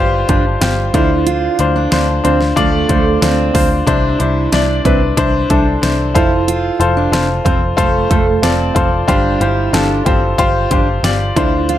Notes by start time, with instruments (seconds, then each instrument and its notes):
Already playing: picked electric bass G1, upright piano G2 F4 G4 B4 C5 D5
0.28 picked electric bass G1, steel-string acoustic guitar D4, upright piano F4 G4 C5, kick, closed hi-hat
0.61 picked electric bass G1, upright piano F4 G4 C5, snare, closed hi-hat
0.94 picked electric bass D2, upright piano D3 D4 F4 C5, steel-string acoustic guitar E4, kick, closed hi-hat
1.26 steel-string acoustic guitar F4, closed hi-hat
1.59 picked electric bass D2, upright piano D4 F4 C5, closed hi-hat
1.76 steel-string acoustic guitar D4
1.91 picked electric bass D2, upright piano D4 F4 C5, snare, closed hi-hat
2.24 picked electric bass D2, steel-string acoustic guitar C4, upright piano D4 F4 C5, closed hi-hat
2.41 snare
2.56 picked electric bass D2, steel-string acoustic guitar A3, upright piano D4 F4 D5, kick, closed hi-hat
2.89 picked electric bass D2, steel-string acoustic guitar A3, upright piano D4 F4 C5, kick, closed hi-hat
3.22 picked electric bass D2, steel-string acoustic guitar C4, upright piano D4 F4 C5, snare, closed hi-hat
3.54 picked electric bass D2, upright piano D4 F4 C5, kick, open hi-hat
3.87 picked electric bass C2, upright piano C3 D4 E4 C5, steel-string acoustic guitar D4, kick, closed hi-hat
4.19 picked electric bass C2, upright piano D4 E4 C5, steel-string acoustic guitar E4, closed hi-hat
4.52 picked electric bass C2, upright piano D4 E4 D5, steel-string acoustic guitar D4, snare, closed hi-hat
4.85 picked electric bass C2, steel-string acoustic guitar C4, upright piano D4 E4 B4, kick, closed hi-hat
5.17 picked electric bass C2, upright piano D4 E4 C5, kick, closed hi-hat
5.50 picked electric bass C2, upright piano D4 E4 A4, steel-string acoustic guitar D4, kick, closed hi-hat
5.82 picked electric bass C2, upright piano D4 E4 C5, snare, closed hi-hat
6.14 picked electric bass F1, steel-string acoustic guitar E4, upright piano F4 A4 C5, kick, closed hi-hat
6.48 steel-string acoustic guitar F4, closed hi-hat
6.80 picked electric bass F1, upright piano F4 A4 C5, closed hi-hat
6.97 steel-string acoustic guitar D4
7.12 picked electric bass F1, upright piano F4 A4 C5, snare, closed hi-hat
7.45 picked electric bass F1, steel-string acoustic guitar C4, upright piano F4 A4 C5, kick, closed hi-hat
7.77 picked electric bass F1, steel-string acoustic guitar A3, upright piano F4 A4 C5, kick, closed hi-hat
8.10 picked electric bass F1, steel-string acoustic guitar A3, upright piano F4 A4 C5, kick, closed hi-hat
8.42 picked electric bass F1, steel-string acoustic guitar C4, upright piano F4 A4 D5, snare, closed hi-hat
8.75 picked electric bass F1, upright piano F4 A4 C5, kick, closed hi-hat
9.08 picked electric bass G1, upright piano G2 F4 G4 C5, steel-string acoustic guitar D4, kick, closed hi-hat
9.40 picked electric bass G1, steel-string acoustic guitar E4, upright piano F4 G4 C5, closed hi-hat
9.73 picked electric bass G1, steel-string acoustic guitar D4, upright piano F4 G4 A4, snare, closed hi-hat
10.05 picked electric bass G1, steel-string acoustic guitar C4, upright piano F4 G4 C5, kick, closed hi-hat
10.38 picked electric bass G1, upright piano F4 G4 C5, kick, closed hi-hat
10.71 picked electric bass G1, steel-string acoustic guitar D4, upright piano F4 G4 C5, kick, closed hi-hat
11.03 picked electric bass G1, upright piano F4 G4 D5, snare, closed hi-hat
11.36 picked electric bass D2, upright piano D3 D4 F4 C5, steel-string acoustic guitar E4, kick, closed hi-hat
11.69 steel-string acoustic guitar F4, closed hi-hat